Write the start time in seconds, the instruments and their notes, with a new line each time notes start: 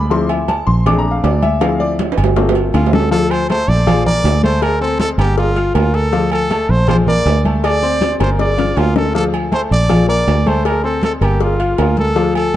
Already playing: fingered electric bass D2
0.10 grand piano F3 C4 E4 C6, cowbell, high conga
0.29 grand piano E5, high conga, low agogo
0.48 grand piano A5, cowbell, high conga, low timbale, low agogo
0.67 fingered electric bass A#1, grand piano C6, high conga
0.86 grand piano A3 C4 D4 D6, cowbell, high conga, low conga, low agogo
0.99 grand piano A#5
1.05 high conga
1.11 grand piano F5
1.24 fingered electric bass D2, grand piano D5, cowbell, high conga, low timbale, low agogo
1.43 grand piano E5, high conga, low agogo
1.61 grand piano F3 C4 E4 F5, cowbell, high conga, high timbale, low agogo
1.80 grand piano D5, high conga
1.99 cowbell, high conga, low timbale, low agogo
2.12 high timbale
2.18 fingered electric bass G1, cowbell, high conga, low agogo
2.24 low timbale
2.36 grand piano A3 A#3 C4 F4, cowbell, high bongo, high conga, low timbale
2.49 low timbale
2.55 high conga, low agogo
2.74 fingered electric bass D2, trumpet F4, cowbell, low bongo, high conga, low agogo
2.86 low timbale
2.93 trumpet A4, cowbell, low bongo, high conga
3.00 low timbale
3.11 grand piano F3 F4 F5, trumpet A4, cowbell, high conga
3.31 trumpet C5, high conga, low agogo
3.50 grand piano A3 A4 A5, trumpet C5, cowbell, high conga, low timbale, low agogo
3.68 fingered electric bass A#1, trumpet D5, high conga
3.87 grand piano F3 F4 F5, cowbell, high conga, low conga, low agogo
4.06 grand piano A#3 A#4 A#5, trumpet D5, high conga, low conga
4.24 fingered electric bass D2, cowbell, low timbale, low agogo
4.43 grand piano A3 A4 A5, trumpet C5, high conga, low agogo
4.62 trumpet A#4, cowbell, high conga, low agogo
4.81 grand piano C4 C5 C6, trumpet A4, high conga
5.00 trumpet A4, cowbell, high conga, low timbale, low agogo
5.18 fingered electric bass G1, grand piano A#3 A#4 A#5, trumpet G4, cowbell, high conga, low agogo
5.38 trumpet F4, cowbell, high conga
5.56 grand piano F4 F5 F6, high conga, low agogo
5.74 fingered electric bass D2, grand piano A#3 A#4 A#5, trumpet F4, cowbell, high conga, low timbale, low agogo
5.94 trumpet A4, cowbell
6.12 grand piano F3 F4 F5, cowbell, high conga
6.32 trumpet A4, high conga, low agogo
6.50 grand piano A3 A4 A5, cowbell, high conga, low timbale, low agogo
6.69 fingered electric bass A#1, trumpet C5, high conga
6.88 grand piano F3 F4 F5, trumpet C5, cowbell, high conga, low conga, low agogo
7.07 grand piano A#3 A#4 A#5, trumpet D5, high conga, low conga
7.26 fingered electric bass D2, cowbell, high conga, low timbale, low agogo
7.45 grand piano A3 A4 A5, high conga, low agogo
7.64 trumpet D5, cowbell, high conga, low agogo
7.82 grand piano C4 C5 C6, high conga
8.01 cowbell, high bongo, high conga, low timbale, low agogo
8.20 fingered electric bass G1, grand piano A#3 A#4 A#5, trumpet C5, cowbell, high bongo, high conga, low agogo
8.39 trumpet D5, cowbell, high bongo, high conga
8.58 grand piano F4 F5 F6, low bongo, high conga, low agogo
8.77 fingered electric bass D2, grand piano A#3 A#4 A#5, trumpet F4, cowbell, high conga, low timbale, low agogo
8.95 trumpet A4, cowbell, low bongo, high conga
9.14 grand piano F3 F4 F5, trumpet A4, cowbell, high conga
9.33 high conga, low agogo
9.51 grand piano A3 A4 A5, trumpet C5, cowbell, high conga, low timbale, low agogo
9.71 fingered electric bass A#1, trumpet D5, high conga
9.89 grand piano F3 F4 F5, cowbell, high conga, low conga, low agogo
10.08 grand piano A#3 A#4 A#5, trumpet D5, high conga
10.27 fingered electric bass D2, cowbell, high conga, low timbale, low agogo
10.46 grand piano A3 A4 A5, trumpet C5, high conga, low agogo
10.65 trumpet A#4, cowbell, low agogo
10.84 grand piano C4 C5 C6, trumpet A4, high conga
11.03 trumpet A4, cowbell, high conga, low timbale, low agogo
11.21 fingered electric bass G1, grand piano A#3 A#4 A#5, trumpet G4, cowbell, high conga, low agogo
11.40 trumpet F4, cowbell, high conga
11.59 grand piano F4 F5 F6, high conga, low agogo
11.78 fingered electric bass D2, grand piano A#3 A#4 A#5, trumpet F4, cowbell, high conga, low timbale, low agogo
11.97 trumpet A4, cowbell, high conga
12.16 grand piano F3 F4 F5, cowbell
12.35 trumpet A4, high conga, low agogo